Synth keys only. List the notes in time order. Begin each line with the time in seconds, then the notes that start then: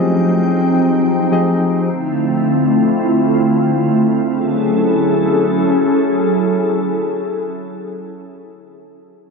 Already playing: F3 C4 G4 G#4 D#5
1.31 F3 C4 G4 G#4 D#5